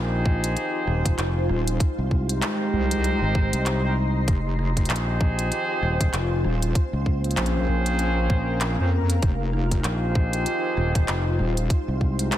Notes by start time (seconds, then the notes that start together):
Already playing: A#1 C4 D#4 F4 G4 G#4 A#4 C5 F5
0.26 kick
0.44 closed hi-hat
0.57 closed hi-hat
0.87 D#1, cross-stick
1.05 kick, closed hi-hat
1.18 F1, clap, closed hi-hat
1.49 D#1, cross-stick
1.68 closed hi-hat
1.80 G#3 G4 C5, kick, closed hi-hat
1.98 C2
2.05 D#5
2.11 C6, kick
2.21 A#5
2.29 C4 D#4 G4 A#4 C5, closed hi-hat
2.42 clap, closed hi-hat
2.73 C2
2.91 closed hi-hat
3.04 closed hi-hat
3.22 G#1
3.35 kick, cross-stick
3.53 C2, closed hi-hat
3.66 clap, closed hi-hat
3.84 C4 D#4 G4 A#4 C5
4.28 F1 F4, kick, closed hi-hat
4.47 C5
4.59 cross-stick
4.77 C4 D#4 G4 G#4 C5, kick, closed hi-hat
4.85 closed hi-hat
4.90 A#1, clap, closed hi-hat
4.96 closed hi-hat
5.21 kick
5.39 closed hi-hat
5.52 closed hi-hat
5.82 D#1, cross-stick
6.01 kick, closed hi-hat
6.13 F1, clap, closed hi-hat
6.44 D#1, cross-stick
6.63 closed hi-hat
6.75 A#3 C#4 A#4 C5, kick, closed hi-hat
6.93 C#2
7.06 kick
7.24 C4 C#4 F4 G#4 C5, closed hi-hat
7.31 closed hi-hat
7.37 A#1, clap, closed hi-hat
7.46 closed hi-hat
7.62 F5
7.68 A#1
7.86 closed hi-hat
7.99 closed hi-hat
8.30 A#1, kick, cross-stick
8.61 clap, closed hi-hat
8.79 F2 C4 C#4 F4 G#4 C5
9.10 closed hi-hat
9.22 F1 D#4 F4, kick, closed hi-hat
9.53 cross-stick
9.71 C4 D#4 G4 G#4 C5, kick, closed hi-hat
9.84 A#1, clap, closed hi-hat
9.95 C5
10.15 kick
10.33 closed hi-hat
10.46 closed hi-hat
10.77 D#1, cross-stick
10.95 kick, closed hi-hat
11.08 F1, clap, closed hi-hat
11.39 D#1, cross-stick
11.57 closed hi-hat
11.70 G#3 G4 C5, kick, closed hi-hat
11.88 C2
12.01 kick
12.19 C4 D#4 G4 A#4 C5, closed hi-hat
12.32 clap, closed hi-hat